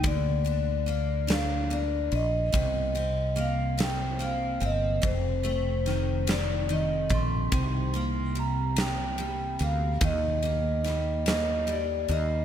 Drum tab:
RD |xxxxxx|xxxxxx|xxxxxx|xxxxxx|
SD |---o--|---o--|--oo--|---o--|
BD |o-----|o-----|o----o|o-----|

RD |xxxxxx|
SD |--oo--|
BD |o-----|